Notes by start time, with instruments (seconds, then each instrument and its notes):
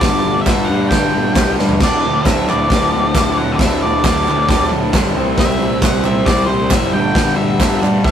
Already playing: lead electric guitar D5
0.01 picked electric bass G1, overdriven electric guitar G2 D3 G3, kick, snare, open hi-hat
0.24 picked electric bass G1
0.41 lead electric guitar E5
0.46 picked electric bass G1, overdriven electric guitar G2 D3 G3, kick, snare, clap, open hi-hat
0.64 lead electric guitar F#5
0.69 overdriven electric guitar G2 D3 G3, picked electric bass G2
0.88 picked electric bass G1, overdriven electric guitar G2 D3, lead electric guitar G5, kick, snare, open hi-hat
0.93 overdriven electric guitar G3
1.14 picked electric bass G1
1.35 picked electric bass C2, overdriven electric guitar G2 D3 G3, kick, snare, clap, open hi-hat
1.59 overdriven electric guitar G2 D3 G3, picked electric bass G2, snare
1.69 floor tom
1.80 picked electric bass D1, overdriven electric guitar D2 A2 D3, lead electric guitar D5, kick, snare, crash
2.06 picked electric bass D2
2.25 picked electric bass D1, overdriven electric guitar D2 A2 D3, lead electric guitar E5, kick, snare, clap, open hi-hat
2.47 picked electric bass D1, overdriven electric guitar D2 A2 D3, lead electric guitar D5, clap
2.70 picked electric bass D1, overdriven electric guitar D2 A2 D3, kick, snare, open hi-hat
2.94 picked electric bass D1
3.14 picked electric bass D1, overdriven electric guitar D2 A2 D3, kick, snare, clap, open hi-hat
3.38 overdriven electric guitar D2 A2 D3, lead electric guitar F#5
3.52 lead electric guitar D5
3.59 picked electric bass D1, overdriven electric guitar D2 A2 D3, lead electric guitar E5, kick, snare, open hi-hat
3.83 picked electric bass D1, lead electric guitar D5
4.04 picked electric bass D1, overdriven electric guitar D2 A2 D3, lead electric guitar D5, kick, snare, clap, open hi-hat
4.28 overdriven electric guitar D2 A2 D3, picked electric bass D2, clap
4.49 picked electric bass D1, overdriven electric guitar D2 A2 D3, kick, snare, open hi-hat
4.72 picked electric bass D1
4.93 picked electric bass G1, overdriven electric guitar D2 A2 D3, kick, snare, clap, open hi-hat
5.15 picked electric bass C2, overdriven electric guitar C3 G3 C4
5.38 picked electric bass C2, overdriven electric guitar C3 G3 C4, lead electric guitar E5, kick, snare, open hi-hat
5.59 picked electric bass C2
5.82 picked electric bass C2, overdriven electric guitar C3 G3 C4, lead electric guitar F#5, kick, snare, clap, open hi-hat
6.04 picked electric bass C2, overdriven electric guitar C3 G3 C4, lead electric guitar E5, clap
6.26 picked electric bass C2, overdriven electric guitar C3 G3 C4, lead electric guitar D5, kick, snare, open hi-hat
6.46 picked electric bass C2, lead electric guitar C5
6.70 picked electric bass F#1, overdriven electric guitar C3 G3 C4, lead electric guitar E5, kick, snare, clap, open hi-hat
6.93 picked electric bass G1, overdriven electric guitar G2 D3 G3, lead electric guitar G5
7.15 picked electric bass G1, overdriven electric guitar G2 D3 G3, kick, snare, open hi-hat
7.37 picked electric bass G1, lead electric guitar E5
7.59 picked electric bass G1, overdriven electric guitar G2 D3 G3, kick, snare, clap, open hi-hat
7.82 overdriven electric guitar G2 D3 G3, picked electric bass G2, clap
8.04 picked electric bass D1, overdriven electric guitar D2 A2 D3, lead electric guitar F#5, kick, snare